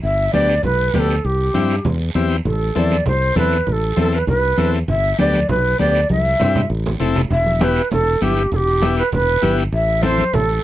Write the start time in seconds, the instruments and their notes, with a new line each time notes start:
0.03 fingered electric bass G1, shakuhachi E5, long guiro
0.33 fingered electric bass D2, transistor combo organ B3 D4 G4, shakuhachi D5, high conga, short guiro
0.49 short guiro
0.63 fingered electric bass B1, shakuhachi B4, low conga, long guiro
0.94 fingered electric bass D2, transistor combo organ B3 D4 G4, shakuhachi B4, high conga, low conga, short guiro
0.99 shakuhachi A4
1.10 short guiro
1.24 fingered electric bass C2, shakuhachi G4, long guiro
1.54 fingered electric bass G2, transistor combo organ C4 E4 G4, high conga, short guiro
1.70 short guiro
1.85 fingered electric bass E2, low conga, long guiro
2.15 fingered electric bass E2, transistor combo organ C4 E4 G4, high conga, short guiro
2.30 short guiro
2.45 fingered electric bass A1, shakuhachi A4, low conga, long guiro
2.75 fingered electric bass E2, transistor combo organ C4 E4 A4, shakuhachi D5, high conga, short guiro
2.90 high conga, short guiro
3.06 fingered electric bass C2, shakuhachi C5, low conga, long guiro
3.36 fingered electric bass E2, transistor combo organ C4 E4 A4, shakuhachi B4, high conga, low conga, short guiro
3.51 short guiro
3.67 fingered electric bass A1, shakuhachi B4, low conga, long guiro
3.72 shakuhachi A4
3.96 fingered electric bass E2, transistor combo organ C4 E4 A4, high conga, short guiro
4.12 shakuhachi B4, short guiro
4.27 fingered electric bass C2, shakuhachi B4, low conga, long guiro
4.57 fingered electric bass E2, transistor combo organ C4 E4 A4, high conga, short guiro
4.73 short guiro
4.88 fingered electric bass G1, shakuhachi E5, low conga, long guiro
5.19 fingered electric bass D2, transistor combo organ B3 D4 G4, shakuhachi D5, high conga, short guiro
5.34 high conga, short guiro
5.49 fingered electric bass B1, shakuhachi B4, low conga, long guiro
5.79 fingered electric bass D2, transistor combo organ B3 D4 G4, shakuhachi D5, high conga, short guiro
5.94 short guiro
6.09 fingered electric bass C2, shakuhachi E5, high conga, long guiro
6.40 fingered electric bass G2, transistor combo organ C4 E4 G4, low conga, short guiro
6.55 low conga, short guiro
6.70 fingered electric bass A1, long guiro
6.86 low conga
7.00 fingered electric bass F1, transistor combo organ C4 E4 A4, low conga, short guiro
7.15 low conga, short guiro
7.30 fingered electric bass E1, shakuhachi E5, high conga, low conga, long guiro
7.46 high conga
7.60 transistor combo organ B3 E4 G4, shakuhachi B4, high conga, short guiro
7.76 short guiro
7.91 fingered electric bass E1, shakuhachi A4, high conga, low conga, long guiro
8.21 fingered electric bass G1, transistor combo organ B3 E4 G4, shakuhachi G4, high conga, short guiro
8.36 short guiro
8.52 fingered electric bass E1, shakuhachi A4, high conga, low conga, long guiro
8.56 shakuhachi G4
8.82 transistor combo organ B3 E4 G4, high conga, short guiro
8.97 shakuhachi B4, short guiro
9.12 fingered electric bass E1, shakuhachi B4, high conga, low conga, long guiro
9.42 fingered electric bass G1, transistor combo organ B3 E4 G4, high conga, short guiro
9.57 short guiro
9.72 fingered electric bass A1, shakuhachi E5, high conga, long guiro
10.02 transistor combo organ C4 E4 A4, shakuhachi C5, high conga, short guiro
10.18 high conga, short guiro
10.33 fingered electric bass A1, shakuhachi A4, high conga, low conga, long guiro